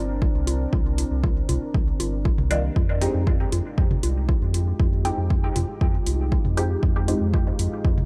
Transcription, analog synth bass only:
0, 0, Header, 1, 2, 480
1, 0, Start_track
1, 0, Tempo, 508475
1, 686, Time_signature, 4, 2, 24, 8
1, 7603, End_track
2, 0, Start_track
2, 0, Title_t, "Analog synth bass"
2, 0, Program_c, 0, 38
2, 0, Note_on_c, 0, 31, 79
2, 266, Note_off_c, 0, 31, 0
2, 328, Note_on_c, 0, 36, 94
2, 626, Note_off_c, 0, 36, 0
2, 686, Note_on_c, 0, 36, 102
2, 986, Note_off_c, 0, 36, 0
2, 1049, Note_on_c, 0, 36, 91
2, 1346, Note_off_c, 0, 36, 0
2, 1406, Note_on_c, 0, 36, 83
2, 1490, Note_off_c, 0, 36, 0
2, 1647, Note_on_c, 0, 36, 87
2, 1811, Note_off_c, 0, 36, 0
2, 1887, Note_on_c, 0, 31, 83
2, 2186, Note_off_c, 0, 31, 0
2, 2249, Note_on_c, 0, 36, 97
2, 2546, Note_off_c, 0, 36, 0
2, 2607, Note_on_c, 0, 41, 99
2, 2906, Note_off_c, 0, 41, 0
2, 2969, Note_on_c, 0, 41, 93
2, 3266, Note_off_c, 0, 41, 0
2, 3326, Note_on_c, 0, 41, 84
2, 3410, Note_off_c, 0, 41, 0
2, 3567, Note_on_c, 0, 41, 87
2, 3731, Note_off_c, 0, 41, 0
2, 3807, Note_on_c, 0, 36, 82
2, 4106, Note_off_c, 0, 36, 0
2, 4169, Note_on_c, 0, 41, 102
2, 4466, Note_off_c, 0, 41, 0
2, 4527, Note_on_c, 0, 41, 100
2, 4826, Note_off_c, 0, 41, 0
2, 4888, Note_on_c, 0, 41, 97
2, 5185, Note_off_c, 0, 41, 0
2, 5246, Note_on_c, 0, 41, 82
2, 5329, Note_off_c, 0, 41, 0
2, 5487, Note_on_c, 0, 41, 91
2, 5651, Note_off_c, 0, 41, 0
2, 5725, Note_on_c, 0, 36, 78
2, 6026, Note_off_c, 0, 36, 0
2, 6087, Note_on_c, 0, 41, 98
2, 6385, Note_off_c, 0, 41, 0
2, 6446, Note_on_c, 0, 41, 101
2, 6746, Note_off_c, 0, 41, 0
2, 6808, Note_on_c, 0, 41, 95
2, 7106, Note_off_c, 0, 41, 0
2, 7165, Note_on_c, 0, 41, 87
2, 7249, Note_off_c, 0, 41, 0
2, 7406, Note_on_c, 0, 41, 88
2, 7571, Note_off_c, 0, 41, 0
2, 7603, End_track
0, 0, End_of_file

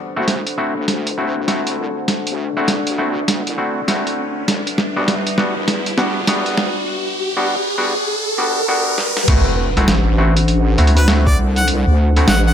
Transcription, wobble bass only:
0, 0, Header, 1, 2, 480
1, 0, Start_track
1, 0, Tempo, 600000
1, 1664, Time_signature, 4, 2, 24, 8
1, 10028, End_track
2, 0, Start_track
2, 0, Title_t, "Wobble bass"
2, 0, Program_c, 0, 39
2, 130, Note_on_c, 0, 38, 91
2, 348, Note_off_c, 0, 38, 0
2, 612, Note_on_c, 0, 38, 93
2, 689, Note_off_c, 0, 38, 0
2, 700, Note_on_c, 0, 38, 92
2, 1068, Note_off_c, 0, 38, 0
2, 1092, Note_on_c, 0, 38, 96
2, 1408, Note_off_c, 0, 38, 0
2, 1421, Note_on_c, 0, 36, 92
2, 1549, Note_off_c, 0, 36, 0
2, 1811, Note_on_c, 0, 38, 91
2, 2128, Note_off_c, 0, 38, 0
2, 2140, Note_on_c, 0, 30, 94
2, 2268, Note_off_c, 0, 30, 0
2, 2291, Note_on_c, 0, 38, 88
2, 2749, Note_off_c, 0, 38, 0
2, 2772, Note_on_c, 0, 36, 92
2, 2849, Note_off_c, 0, 36, 0
2, 3103, Note_on_c, 0, 30, 92
2, 3230, Note_off_c, 0, 30, 0
2, 3584, Note_on_c, 0, 28, 93
2, 3710, Note_off_c, 0, 28, 0
2, 3973, Note_on_c, 0, 28, 93
2, 4190, Note_off_c, 0, 28, 0
2, 4451, Note_on_c, 0, 28, 94
2, 4528, Note_off_c, 0, 28, 0
2, 4540, Note_on_c, 0, 40, 96
2, 4908, Note_off_c, 0, 40, 0
2, 4930, Note_on_c, 0, 40, 99
2, 5248, Note_off_c, 0, 40, 0
2, 5262, Note_on_c, 0, 38, 98
2, 5389, Note_off_c, 0, 38, 0
2, 7426, Note_on_c, 0, 38, 96
2, 7551, Note_off_c, 0, 38, 0
2, 7812, Note_on_c, 0, 36, 95
2, 7889, Note_off_c, 0, 36, 0
2, 7903, Note_on_c, 0, 33, 99
2, 8609, Note_off_c, 0, 33, 0
2, 8623, Note_on_c, 0, 38, 96
2, 9089, Note_off_c, 0, 38, 0
2, 9104, Note_on_c, 0, 36, 98
2, 9470, Note_off_c, 0, 36, 0
2, 9492, Note_on_c, 0, 38, 96
2, 9809, Note_off_c, 0, 38, 0
2, 9825, Note_on_c, 0, 33, 96
2, 10028, Note_off_c, 0, 33, 0
2, 10028, End_track
0, 0, End_of_file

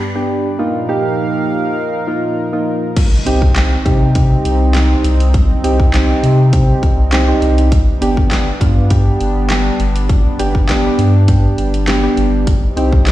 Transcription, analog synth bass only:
0, 0, Header, 1, 2, 480
1, 0, Start_track
1, 0, Key_signature, -3, "minor"
1, 0, Tempo, 594059
1, 477, Time_signature, 4, 2, 24, 8
1, 10599, End_track
2, 0, Start_track
2, 0, Title_t, "Analog synth bass"
2, 0, Program_c, 0, 38
2, 2636, Note_on_c, 0, 36, 89
2, 3043, Note_off_c, 0, 36, 0
2, 3116, Note_on_c, 0, 48, 102
2, 3522, Note_off_c, 0, 48, 0
2, 3596, Note_on_c, 0, 36, 93
2, 4003, Note_off_c, 0, 36, 0
2, 4076, Note_on_c, 0, 36, 105
2, 4483, Note_off_c, 0, 36, 0
2, 4557, Note_on_c, 0, 36, 94
2, 4963, Note_off_c, 0, 36, 0
2, 5037, Note_on_c, 0, 48, 97
2, 5443, Note_off_c, 0, 48, 0
2, 5517, Note_on_c, 0, 36, 94
2, 5923, Note_off_c, 0, 36, 0
2, 5997, Note_on_c, 0, 36, 105
2, 6403, Note_off_c, 0, 36, 0
2, 6477, Note_on_c, 0, 31, 94
2, 6883, Note_off_c, 0, 31, 0
2, 6956, Note_on_c, 0, 43, 103
2, 7363, Note_off_c, 0, 43, 0
2, 7436, Note_on_c, 0, 31, 98
2, 7843, Note_off_c, 0, 31, 0
2, 7916, Note_on_c, 0, 31, 110
2, 8323, Note_off_c, 0, 31, 0
2, 8396, Note_on_c, 0, 31, 93
2, 8803, Note_off_c, 0, 31, 0
2, 8877, Note_on_c, 0, 43, 104
2, 9283, Note_off_c, 0, 43, 0
2, 9357, Note_on_c, 0, 31, 93
2, 9763, Note_off_c, 0, 31, 0
2, 9837, Note_on_c, 0, 31, 107
2, 10243, Note_off_c, 0, 31, 0
2, 10317, Note_on_c, 0, 36, 94
2, 10599, Note_off_c, 0, 36, 0
2, 10599, End_track
0, 0, End_of_file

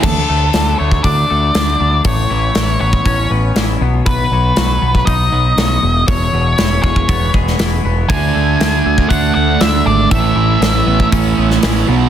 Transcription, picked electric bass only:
0, 0, Header, 1, 2, 480
1, 0, Start_track
1, 0, Tempo, 504202
1, 35, Time_signature, 4, 2, 24, 8
1, 11510, End_track
2, 0, Start_track
2, 0, Title_t, "Picked electric bass"
2, 0, Program_c, 0, 34
2, 34, Note_on_c, 0, 38, 83
2, 221, Note_off_c, 0, 38, 0
2, 283, Note_on_c, 0, 38, 74
2, 466, Note_off_c, 0, 38, 0
2, 519, Note_on_c, 0, 38, 66
2, 703, Note_off_c, 0, 38, 0
2, 765, Note_on_c, 0, 38, 66
2, 946, Note_off_c, 0, 38, 0
2, 993, Note_on_c, 0, 38, 76
2, 1179, Note_off_c, 0, 38, 0
2, 1246, Note_on_c, 0, 38, 69
2, 1427, Note_off_c, 0, 38, 0
2, 1479, Note_on_c, 0, 38, 69
2, 1662, Note_off_c, 0, 38, 0
2, 1719, Note_on_c, 0, 38, 83
2, 1902, Note_off_c, 0, 38, 0
2, 1952, Note_on_c, 0, 33, 79
2, 2138, Note_off_c, 0, 33, 0
2, 2199, Note_on_c, 0, 33, 73
2, 2382, Note_off_c, 0, 33, 0
2, 2437, Note_on_c, 0, 33, 73
2, 2621, Note_off_c, 0, 33, 0
2, 2674, Note_on_c, 0, 33, 79
2, 2859, Note_off_c, 0, 33, 0
2, 2909, Note_on_c, 0, 33, 83
2, 3096, Note_off_c, 0, 33, 0
2, 3144, Note_on_c, 0, 33, 68
2, 3334, Note_off_c, 0, 33, 0
2, 3383, Note_on_c, 0, 33, 69
2, 3573, Note_off_c, 0, 33, 0
2, 3625, Note_on_c, 0, 35, 81
2, 3814, Note_off_c, 0, 35, 0
2, 3869, Note_on_c, 0, 35, 81
2, 4056, Note_off_c, 0, 35, 0
2, 4106, Note_on_c, 0, 35, 77
2, 4295, Note_off_c, 0, 35, 0
2, 4350, Note_on_c, 0, 35, 70
2, 4537, Note_off_c, 0, 35, 0
2, 4588, Note_on_c, 0, 35, 77
2, 4776, Note_off_c, 0, 35, 0
2, 4831, Note_on_c, 0, 35, 80
2, 5018, Note_off_c, 0, 35, 0
2, 5066, Note_on_c, 0, 35, 73
2, 5255, Note_off_c, 0, 35, 0
2, 5305, Note_on_c, 0, 35, 75
2, 5494, Note_off_c, 0, 35, 0
2, 5547, Note_on_c, 0, 28, 87
2, 5735, Note_off_c, 0, 28, 0
2, 5791, Note_on_c, 0, 28, 86
2, 5978, Note_off_c, 0, 28, 0
2, 6025, Note_on_c, 0, 28, 73
2, 6214, Note_off_c, 0, 28, 0
2, 6270, Note_on_c, 0, 28, 67
2, 6458, Note_off_c, 0, 28, 0
2, 6508, Note_on_c, 0, 28, 75
2, 6696, Note_off_c, 0, 28, 0
2, 6748, Note_on_c, 0, 28, 76
2, 6936, Note_off_c, 0, 28, 0
2, 6991, Note_on_c, 0, 28, 73
2, 7178, Note_off_c, 0, 28, 0
2, 7231, Note_on_c, 0, 28, 73
2, 7418, Note_off_c, 0, 28, 0
2, 7470, Note_on_c, 0, 28, 83
2, 7657, Note_off_c, 0, 28, 0
2, 7709, Note_on_c, 0, 38, 91
2, 7897, Note_off_c, 0, 38, 0
2, 7956, Note_on_c, 0, 38, 69
2, 8141, Note_off_c, 0, 38, 0
2, 8195, Note_on_c, 0, 38, 73
2, 8381, Note_off_c, 0, 38, 0
2, 8434, Note_on_c, 0, 38, 81
2, 8620, Note_off_c, 0, 38, 0
2, 8666, Note_on_c, 0, 38, 74
2, 8855, Note_off_c, 0, 38, 0
2, 8913, Note_on_c, 0, 38, 71
2, 9099, Note_off_c, 0, 38, 0
2, 9154, Note_on_c, 0, 38, 74
2, 9340, Note_off_c, 0, 38, 0
2, 9386, Note_on_c, 0, 32, 81
2, 9575, Note_off_c, 0, 32, 0
2, 9628, Note_on_c, 0, 33, 79
2, 9817, Note_off_c, 0, 33, 0
2, 9858, Note_on_c, 0, 33, 75
2, 10051, Note_off_c, 0, 33, 0
2, 10101, Note_on_c, 0, 33, 79
2, 10292, Note_off_c, 0, 33, 0
2, 10340, Note_on_c, 0, 33, 79
2, 10532, Note_off_c, 0, 33, 0
2, 10591, Note_on_c, 0, 33, 81
2, 10779, Note_off_c, 0, 33, 0
2, 10833, Note_on_c, 0, 33, 66
2, 11020, Note_off_c, 0, 33, 0
2, 11079, Note_on_c, 0, 33, 75
2, 11263, Note_off_c, 0, 33, 0
2, 11312, Note_on_c, 0, 35, 85
2, 11499, Note_off_c, 0, 35, 0
2, 11510, End_track
0, 0, End_of_file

